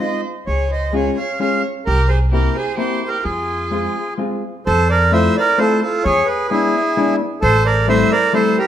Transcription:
0.00 hollow-body jazz guitar G#3 C4 D#4 F4, violin C5, accordion D#5
0.47 upright bass C#2, violin G#4, accordion C#5
0.71 violin C5, accordion D#5
0.93 hollow-body jazz guitar G#3 C#4 F4 G#4, violin G#4, accordion C#5
1.18 violin C#5, accordion F5
1.40 hollow-body jazz guitar G#3 C#4 F4 G#4, violin C#5, accordion F5
1.86 upright bass C2, violin G4, accordion A#4
2.08 violin G#4, accordion C5
2.31 hollow-body jazz guitar A#3 C4 E4 G4, violin G4, accordion A#4
2.55 violin G#4, accordion C5
2.77 hollow-body jazz guitar A#3 C4 E4 G4, violin G4, accordion C5
3.08 violin G4, accordion A#4
3.24 upright bass F2, violin F4, accordion G#4
3.71 hollow-body jazz guitar G#3 C4 F4 G#4
4.18 hollow-body jazz guitar G#3 C4 F4 G#4
4.66 upright bass F2, accordion A4 C5
4.89 accordion A#4 D5
5.12 hollow-body jazz guitar A3 C4 E4 F4, accordion C5 E5
5.37 accordion A#4 D5
5.58 hollow-body jazz guitar A3 C4 E4 F4, accordion A4 C5
5.82 accordion F4 A4
6.04 upright bass E2, accordion G#4 C#5
6.26 accordion G#4 B4
6.49 hollow-body jazz guitar G#3 B3 D4 E4, accordion E4 G#4
6.97 hollow-body jazz guitar G#3 B3 D4 E4
7.41 upright bass A1, accordion A4 C5
7.66 accordion A#4 D5
7.88 hollow-body jazz guitar G3 A3 C4 E4, accordion C5 E5
8.12 accordion A#4 D5
8.33 hollow-body jazz guitar G3 A3 C4 E4, accordion A4 C5
8.58 accordion G4 A#4

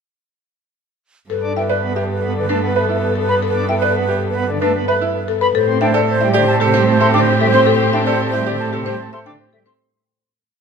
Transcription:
1.30 cello G2, string section B3 A4, marimba A4, alto flute B4
1.43 pipe organ D4
1.56 grand piano E4, alto flute B4, marimba E5, flute G5
1.69 grand piano B4, marimba D5
1.83 pipe organ B3, alto flute B4
1.96 grand piano G4, marimba E5
2.11 alto flute B4
2.23 pipe organ B3
2.36 pipe organ D3, alto flute B4
2.49 pipe organ A3, grand piano D4, marimba B4
2.62 pipe organ B3, alto flute B4
2.75 grand piano B4, marimba E5, flute B5
2.89 grand piano E4
2.94 alto flute B4
3.16 marimba A4
3.21 alto flute B4
3.29 marimba B4, flute B5
3.42 marimba A4
3.49 alto flute B4
3.55 pipe organ D4
3.69 grand piano E4, marimba E5, flute G5
3.76 alto flute B4
3.82 grand piano B4, marimba D5
3.95 pipe organ B3
4.04 alto flute B4
4.08 grand piano G4, marimba E5
4.31 alto flute B4
4.35 pipe organ B3
4.49 pipe organ D3
4.58 pipe organ A3, grand piano D4, alto flute B4, marimba B4
4.75 pipe organ B3
4.86 alto flute B4, grand piano B4, marimba E5, flute B5
5.01 grand piano E4
5.14 alto flute B4
5.28 marimba A4
5.41 marimba B4, flute B5
5.54 cello A2, string section C4 G4, marimba A4, alto flute C5
5.68 pipe organ C4
5.81 pipe organ A3, grand piano D4, alto flute C5, marimba E5, flute G5
5.94 grand piano A4, marimba D5
6.08 pipe organ A3, alto flute C5
6.21 pipe organ G3, grand piano E4, marimba E5
6.34 pipe organ D3, grand piano G4, alto flute C5, marimba D5
6.47 pipe organ A3, flute A5
6.60 pipe organ C3, marimba G4, grand piano A4, alto flute C5
6.74 pipe organ G3, grand piano C4, marimba C5
6.87 pipe organ A3, alto flute C5
7.00 grand piano A4, marimba E5, flute C6
7.14 pipe organ D3, grand piano D4, marimba G5, flute D6
7.19 alto flute C5
7.40 pipe organ G3, marimba A4, flute E5
7.47 alto flute C5
7.54 grand piano C4, marimba C5, flute C6
7.67 marimba A4
7.75 alto flute C5
7.80 pipe organ C4
7.93 pipe organ A3, grand piano D4, marimba E5, flute G5
8.02 alto flute C5
8.07 grand piano A4, marimba D5
8.21 pipe organ A3
8.29 alto flute C5
8.33 pipe organ G3, grand piano E4, marimba E5
8.46 pipe organ D3, grand piano G4, marimba D5
8.56 alto flute C5, flute A5
8.61 pipe organ A3
8.73 pipe organ C3, marimba G4, grand piano A4
8.84 pipe organ G3, grand piano C4, alto flute C5, marimba C5
9.00 pipe organ A3
9.11 grand piano A4, alto flute C5, marimba E5, flute C6
9.26 pipe organ D3, grand piano D4, marimba G5, flute D6
9.39 alto flute C5
9.53 pipe organ G3, marimba A4, flute E5
9.66 grand piano C4, marimba C5, flute C6

